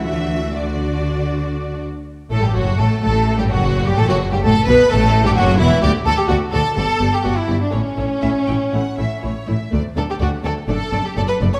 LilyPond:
<<
  \new Staff \with { instrumentName = "Violin section" } { \time 4/4 \key d \major \tempo 4 = 125 e''4 d''2~ d''8 r8 | r8 a'16 g'16 fis'8 a'8 a'8. g'16 fis'8. g'16 | a'16 fis'8 g'16 a'8 b'8 a'8. g'16 fis'8 e'8 | d''8 d''8 d''8 d''8 d''8 d''8 d''8 d''8 |
cis''8 cis''8 e''8 g''8 fis''8 e''8 cis''8 e''8 | d''8 d''8 d''8 d''8 d''8 d''8 d''8 d''8 | }
  \new Staff \with { instrumentName = "Violin section" } { \time 4/4 \key d \major e''4 d''2~ d''8 r8 | r8 a'16 g'16 fis'8 a'8 a'8. g'16 fis'8. g'16 | a'16 fis'8 g'16 a'8 b'8 a'8. g'16 fis'8 e'8 | g'8 a'16 g'16 fis'8 a'8 a'8. g'16 fis'16 e'8 d'16 |
cis'2. r4 | r8 a'16 g'16 fis'8 a'8 a'8. g'16 a'16 b'8 cis''16 | }
  \new Staff \with { instrumentName = "Viola section" } { \time 4/4 \key d \major <d' fis'>4 <d' fis'>2~ <d' fis'>8 r8 | r8 a16 g16 fis8 a8 a8. g16 fis8. g16 | a16 fis8 g16 a8 b8 a8. g16 fis8 e8 | <a fis'>8 <a fis'>8 <a fis'>8 <a fis'>8 <b g'>8 <b g'>8 <b g'>8 <b g'>8 |
<a e'>8 <a e'>8 <a e'>8 <a e'>8 <a e'>8 <a e'>8 <a e'>8 <a e'>8 | <a d'>8 <a d'>8 <a d'>8 <a d'>8 <a d'>8 <a d'>8 <a d'>8 <a d'>8 | }
  \new Staff \with { instrumentName = "Cello section" } { \clef bass \time 4/4 \key d \major e4 d2~ d8 r8 | r8 a,16 g,16 fis,8 a,8 a,8. g,16 fis,8. g,16 | a,16 fis,8 g,16 a,8 b,8 a,8. g,16 fis,8 e,8 | d,8 d,8 d,8 d,8 g,8 g,8 g,8 g,8 |
a,8 a,8 a,8 a,8 a,8 a,8 a,8 a,8 | d,8 d,8 d,8 d,8 fis,8 fis,8 fis,8 fis,8 | }
  \new Staff \with { instrumentName = "Double bass section" } { \clef bass \time 4/4 \key d \major d,2.~ d,8 r8 | r8 a,,16 r16 fis,,8 a,,8 a,,8. r16 fis,,8. r16 | a,,16 fis,,8 r16 a,,8 b,,8 a,,8. r16 fis,,8 e,,8 | d,8 d,8 d,8 d,8 g,,8 g,,8 g,,8 g,,8 |
a,,8 a,,8 a,,8 a,,8 a,,8 a,,8 a,,8 a,,8 | d,8 d,8 d,8 d,8 fis,,8 fis,,8 fis,,8 fis,,8 | }
>>